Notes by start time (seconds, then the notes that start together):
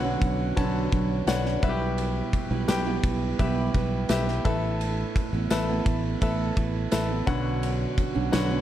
Already playing: B1 B2 D3 F#4 B4 C#5 F#5
0.03 B2 F#3 C#4 D4 F#4
0.21 B1, kick, ride
0.56 B1 B2 F#3 C#4 D4 F#4 B4 C#5 A5, kick, ride
0.63 D3
0.91 B1 F#3 C#4 D4 F#4, kick, ride
1.27 B1 D4 F#4 B4 C#5 F#5, snare, ride, tambourine
1.44 C#4 D4 F#4, snare
1.62 B1 B2 G3 B3 E4 F#4 B4 E5, kick, ride
1.69 G4
1.98 ride
2.33 kick, ride
2.51 B1 B2 G3 B3 E4 B4
2.68 B1 G4 B4 G5, snare, ride, tambourine
2.86 B2 G3 B3 E4 B4
3.03 B1, kick, ride
3.39 B1 B2 G3 B3 E4 G4 B4 E5, kick, ride
3.74 B1 G3 B3 E4 B4, kick, ride
4.09 B1 G4 B4 E5, snare, ride, tambourine
4.27 B3 E4 B4, snare
4.45 A1 A2 A3 B3 E4 A4 B4 E5, kick, ride
4.81 ride
5.16 kick, ride
5.33 A1 A3 B3 E4 A4
5.50 A1 A4 B4 E5, snare, ride, tambourine
5.69 A3 B3 E4 A4
5.86 A1, kick, ride
6.21 A1 A3 B3 E4 A4 B4 E5, kick, ride
6.57 A1 A3 B3 E4 A4, kick, ride
6.92 A1 A4 B4 E5, snare, ride, tambourine
7.09 B3 E4 A4
7.26 B1 B2 D3 F#3 C#4 D4 F#4 B4 C#5 F#5, kick, ride
7.63 ride
7.98 kick, ride
8.14 B1 B2 F#3 C#4 D4 F#4
8.32 B1 D3 F#4 B4 C#5 F#5, snare, ride, tambourine
8.50 B2 F#3 C#4 D4 F#4